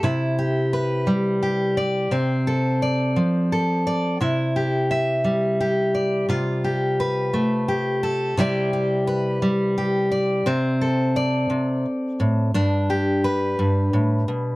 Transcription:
\new Staff \with { instrumentName = "Steel-string acoustic guitar" } { \time 6/8 \key c \major \tempo 4. = 58 << { e'8 g'8 b'4 g'8 d''8 | c'8 a'8 d''4 a'8 d''8 | e'8 g'8 e''4 g'8 d''8 | f'8 g'8 b'4 g'8 a'8 |
<g e' g' d''>8 g'8 b'4 g'8 d''8 | c'8 a'8 d''2 | d'8 g'8 b'2 | } \\ { c4. g4. | c4. f4. | c4. g4. | c4. a4. |
c4. g4. | c4. c8 r8 a,8 | g,4. g,8 a,8 b,8 | } >> }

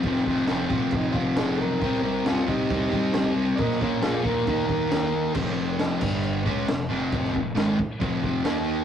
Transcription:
<<
  \new Staff \with { instrumentName = "Transistor combo organ" } { \time 4/4 \key f \minor \tempo 4 = 136 r2 ees'8 f'8 aes'8 <a' bes'>8~ | <a' bes'>8 bes'8 f'8 <ees' g'>2 r8 | <bes' d'' ees''>8 <des' bes'>8 <f' aes'>8 bes'2~ bes'8 | r1 |
r1 | }
  \new Staff \with { instrumentName = "Distorted electric guitar" } { \clef bass \time 4/4 \key f \minor <f, c f>8 <c f>8 <f, c f>8 <c f>4 <c f>8 <f, c f>4 | <c g c'>8 <g c'>8 <c g c'>8 <g c'>4 <g c'>8 <c g c'>4 | <bes, f bes>8 <f bes>8 <bes, f bes>8 <f bes>8 <ees bes ees'>8 <bes ees'>8 <ees bes ees'>4 | <f, c f>4. <g, d g>4 <des aes des'>8 <f, c>8 <f, c f>8~ |
<f, c f>8 <f, c>8 <aes, ees aes>8 r8 <f, c f>4 <ees bes ees'>4 | }
  \new Staff \with { instrumentName = "Fingered electric bass" } { \clef bass \time 4/4 \key f \minor f,,8 f,,8 f,,8 bes,,8 f,,8 f,,8 f,,8 b,,8 | c,8 c,8 c,8 c,8 c,8 c,8 c,8 c,8 | bes,,8 bes,,8 bes,,8 ees,8 ees,8 ees,8 ees,8 ees,8 | f,,4. g,,4 des,8 f,,8 f,,8~ |
f,,8 f,,8 aes,,8 r8 f,,4 ees,4 | }
  \new DrumStaff \with { instrumentName = "Drums" } \drummode { \time 4/4 <cymc bd>16 sn16 bd8 <cymc sn>8 bd8 <cymc bd>8 bd8 <cymc sn>4 | <cymc bd>16 sn8. <cymc sn>8 bd8 <cymc bd>8 bd8 <cymc sn>4 | <cymc bd>16 sn16 bd8 <cymc sn>8 bd8 <cymc bd>8 bd8 <cymc sn>4 | <cymc bd>16 sn8. <cymc sn>8 <cymc bd>8 cymc8 bd8 <cymc sn>4 |
<cymc bd>16 sn16 bd8 <cymc sn>8 bd8 <cymc bd>8 bd8 <cymc sn>4 | }
>>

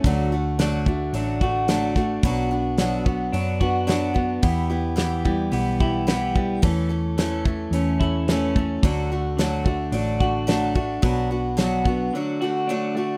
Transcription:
<<
  \new Staff \with { instrumentName = "Steel-string acoustic guitar" } { \time 4/4 \key d \major \tempo 4 = 109 <d fis a d' fis'>8 <a d' fis'>8 <d fis a d' fis'>8 <a d' fis'>8 <fis a d' fis'>8 <a d' fis'>8 <d fis a d' fis'>8 <a d' fis'>8 | <b, fis b d' fis'>8 <b d' fis'>8 <b, fis b d' fis'>8 <b d' fis'>8 <fis b d' fis'>8 <b d' fis'>8 <b, fis b d' fis'>8 <b d' fis'>8 | <e b e' g'>8 <b e' g'>8 <e b e' g'>8 <b e' g'>8 <e b e' g'>8 <b e' g'>8 <e b e' g'>8 <b e' g'>8 | <e a cis' a'>8 <a cis' a'>8 <e a cis' a'>8 <a cis' a'>8 <e a cis' a'>8 <a cis' a'>8 <e a cis' a'>8 <a cis' a'>8 |
<d fis a d' fis'>8 <a d' fis'>8 <d fis a d' fis'>8 <a d' fis'>8 <fis a d' fis'>8 <a d' fis'>8 <d fis a d' fis'>8 <a d' fis'>8 | <b, fis b d' fis'>8 <b d' fis'>8 <b, fis b d' fis'>8 <b d' fis'>8 <fis a d' fis'>8 <a d' fis'>8 <d fis a d' fis'>8 <a d' fis'>8 | }
  \new Staff \with { instrumentName = "Clean electric guitar" } { \time 4/4 \key d \major d4 d8 a8 d'8 fis'8 d'8 a8 | b,4 fis8 b8 d'8 fis'8 d'8 b8 | e,4 e8 g8 b8 e'8 b8 g8 | e4 e8 a8 cis'8 e'8 cis'8 a8 |
d4 d8 a8 d'8 fis'8 d'8 a8 | b,4 fis8 b8 d8 fis'8 d'8 a8 | }
  \new Staff \with { instrumentName = "Fingered electric bass" } { \clef bass \time 4/4 \key d \major d,2 a,,2 | b,,2 fis,2 | e,2 b,,2 | e,2 e,2 |
d,2 a,,2 | b,,2 r2 | }
  \new DrumStaff \with { instrumentName = "Drums" } \drummode { \time 4/4 <hho bd>4 <hho sn>8 bd8 hho8 bd8 <hho sn>8 <bd sn>8 | <hho bd>4 <hho sn>8 bd8 hho8 bd8 <hho sn>8 bd8 | <hho bd>4 <hho sn>8 bd8 hho8 bd8 <hho sn>8 bd8 | <hho bd>4 <hho sn>8 bd8 hho8 bd8 <hho sn>8 bd8 |
<hho bd>4 <hho sn>8 bd8 hho8 bd8 <hho sn>8 bd8 | <hho bd>4 <hho sn>8 bd8 r4 r4 | }
>>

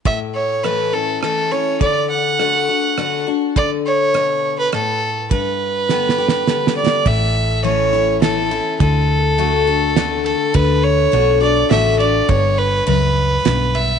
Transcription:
<<
  \new Staff \with { instrumentName = "Fiddle" } { \time 3/4 \key a \mixolydian \tempo 4 = 103 e''8 cis''8 b'8 a'8 a'8 cis''8 | d''8 fis''2 r8 | d''8 cis''4~ cis''16 b'16 a'4 | b'2~ b'8 d''8 |
e''4 cis''4 a'4 | a'2~ a'8 a'8 | b'8 cis''4 d''8 e''8 d''8 | cis''8 b'8 b'4. e''8 | }
  \new Staff \with { instrumentName = "Steel-string acoustic guitar" } { \time 3/4 \key a \mixolydian << { r4 <e a cis' e'>8 <cis' e'>8 <e a cis' e'>8 <cis' e'>8 | r4 <d a d' fis'>8 <d' fis'>8 <d a d' fis'>8 <d' fis'>8 | r2. | r4 <d g b g'>8 <b g'>8 <d g b g'>4 |
r4 <e a cis' e'>8 <cis' e'>8 <e a cis' e'>8 <cis' e'>8 | r4 <d a d' fis'>8 <d' fis'>8 <d a d' fis'>4 | r4 <d a d' fis'>8 <d' fis'>8 <d a d' fis'>8 <d' fis'>8 | r2. | } \\ { a,2 r4 | d2 r4 | d4 b,4 a,4 | g,2 r4 |
a,2 r4 | d2 r4 | d2 r4 | g,4 fis,4 g,4 | } >> }
  \new Staff \with { instrumentName = "Fingered electric bass" } { \clef bass \time 3/4 \key a \mixolydian r2. | r2. | r2. | r2. |
a,,2. | d,2. | d,4 b,,4 a,,4 | g,,4 cis,4 b,,4 | }
  \new DrumStaff \with { instrumentName = "Drums" } \drummode { \time 3/4 bd4 ss4 ss4 | bd4 ss4 ss4 | bd4 ss4 ss4 | bd4 \tuplet 3/2 { sn8 sn8 sn8 sn8 sn8 sn8 } |
<bd cymr>4 cymr4 <cymr sn>8 cymr8 | <bd cymr>4 cymr4 <cymr sn>8 cymr8 | <bd cymr>4 cymr4 <cymr sn>8 cymr8 | <bd cymr>4 cymr4 <cymr sn>8 cymr8 | }
>>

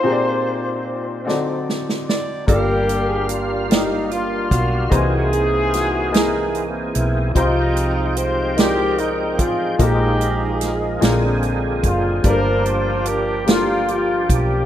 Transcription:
<<
  \new Staff \with { instrumentName = "Alto saxophone" } { \time 6/8 \key g \phrygian \tempo 4. = 49 c''2 r8 d''8 | bes'8. aes'16 g'4 f'8 ges'8~ | ges'8 gis'8 ges'8 gis'8. r16 e'8 | f'4 c''8 bes'4 aes'8 |
aes'2 r4 | c''4 bes'8 g'4 f'8 | }
  \new Staff \with { instrumentName = "Horn section" } { \time 6/8 \key g \phrygian << { c''2 r4 | g'4 f'8 ees'8 f'4 | gis'2~ gis'8 r8 | ees'4 f'8 g'8 ees'8 f'8 |
g'4 r4. f'8 | bes'8 f'8 g'8 f'8 f'8 g'8 | } \\ { <ees' f'>2 r4 | <bes d'>4. r8 <bes d'>4 | <dis' e'>2~ <dis' e'>8 r8 | <g aes>4. r4. |
ees'4. r4. | <d' f'>4. r4. | } >> }
  \new Staff \with { instrumentName = "Upright piano" } { \time 6/8 \key g \phrygian <c' g' aes' bes' c'' d''>4 r8 <fis c' ees' a' d''>4 r8 | <bes d' f' g' d''>4 r8 <bes f' g' d''>4 r8 | <e bes gis' c'' dis''>4 r8 <e bes gis' bes' dis''>4 r8 | <f ees' f' g' c''>4 r8 <aes ees' f' g' d''>4 r8 |
<aes bes ees' f' a' bes'>4 r8 <aes c' d' f' bes'>4 r8 | <g bes d' f' a' bes'>4 r8 <g bes d' f' a' bes'>4 r8 | }
  \new Staff \with { instrumentName = "Upright piano" } { \clef bass \time 6/8 \key g \phrygian bes,4. d4. | g,4. r4. | c4. r4. | c4. r4. |
bes,4. bes,4. | g,4. r4. | }
  \new Staff \with { instrumentName = "Tonewheel organ" } { \time 6/8 \key g \phrygian r2. | <g bes ees' f''>2. | <e bes c' gis'>2. | <f c' ees' g''>2. |
<f aes bes ees'>4. <d bes c' aes'>4. | <f bes d' g'>2. | }
  \new Staff \with { instrumentName = "Fingered electric bass" } { \clef bass \time 6/8 \key g \phrygian r2. | g,,2~ g,,8 ces,8 | c,2~ c,8 ces,8 | c,2~ c,8 a,,8 |
bes,,4. bes,,4 ges,,8 | g,,2~ g,,8 ces,8 | }
  \new DrumStaff \with { instrumentName = "Drums" } \drummode { \time 6/8 r4. sn8 sn16 sn16 sn8 | <hh bd>8 hh8 hh8 <hh sn>8 hh8 <hh bd>8 | <hh bd>8 hh8 <hh sn>8 <hh sn>8 hh8 hh8 | <hh bd>8 hh8 hh8 <hh sn>8 hh8 <hh bd>8 |
<hh bd>8 hh8 <hh sn>8 <hh sn>8 hh8 <hh bd>8 | <hh bd>8 hh8 hh8 <hh sn>8 hh8 <hh bd>8 | }
>>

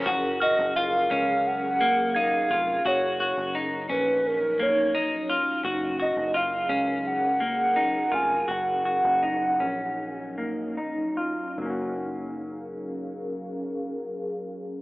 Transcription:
<<
  \new Staff \with { instrumentName = "Synth bell" } { \time 4/4 \key fis \major \tempo 4 = 85 r8 eis'''2~ eis'''8 gis'''4~ | gis'''8 r2. r8 | r1 | r1 |
r1 | }
  \new Staff \with { instrumentName = "Soft synth lead" } { \time 4/4 \key fis \major r8 dis''8 eis''4 fis''4 eis''4 | cis''4 r8 b'8 ais'8 cis''4 r8 | r8 dis''8 eis''4 fis''4. gis''8 | fis''2. r4 |
r1 | }
  \new Staff \with { instrumentName = "Ambient pad" } { \time 4/4 \key fis \major << { <gis' ais'>1 | dis'1 | <gis' ais'>1 | dis'1 |
<fis cis' gis' ais' eis''>1 | } \\ { <fis cis'>1~ | <fis cis'>1~ | <fis cis'>1~ | <fis cis'>1 |
r1 | } >> }
  \new Staff \with { instrumentName = "Clean electric guitar" } { \time 4/4 \key fis \major fis'8 fis'8 eis'8 cis'4 ais8 dis'8 eis'8 | fis'8 fis'8 dis'8 cis'4 ais8 dis'8 eis'8 | fis'8 fis'8 eis'8 cis'4 ais8 dis'8 eis'8 | fis'8 fis'8 dis'8 cis'4 ais8 dis'8 eis'8 |
<fis ais cis' fis'>1 | }
  \new Staff \with { instrumentName = "Fingered electric bass" } { \clef bass \time 4/4 \key fis \major fis,,8. fis,,8. cis,2 eis,,8 | fis,,8. fis,,8. ais,,2 r8 | fis,,8. fis,,8. cis,2 eis,,8 | fis,,8. fis,,8. ais,,2 r8 |
fis,,1 | }
>>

